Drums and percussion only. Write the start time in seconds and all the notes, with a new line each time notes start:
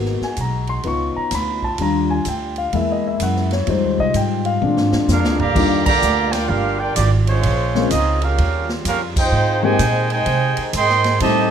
0.06 snare
0.22 snare
0.36 kick, hi-hat pedal, ride
0.67 ride
0.83 kick, ride
1.31 kick, snare, hi-hat pedal, ride
1.62 kick
1.78 kick, ride
2.25 kick, hi-hat pedal, ride
2.56 ride
2.73 kick, ride
3.20 kick, hi-hat pedal, ride
3.36 snare
3.51 snare, ride
3.67 kick, ride
3.98 kick
4.14 kick, hi-hat pedal, ride
4.45 ride
4.62 high tom
4.77 snare
4.92 snare
5.08 snare, hi-hat pedal
5.24 snare
5.39 floor tom
5.56 kick, crash
5.86 kick, crash
6.02 hi-hat pedal
6.33 snare, ride
6.50 kick
6.96 kick, hi-hat pedal, ride
7.27 ride
7.43 kick, ride
7.75 snare
7.91 kick, hi-hat pedal, ride
8.21 ride
8.38 ride
8.69 snare
8.85 kick, hi-hat pedal, ride
9.16 kick, crash
9.79 kick, hi-hat pedal, ride
10.10 ride
10.26 kick, ride
10.57 ride
10.73 kick, hi-hat pedal, ride
10.89 snare
11.04 snare, ride
11.20 kick, ride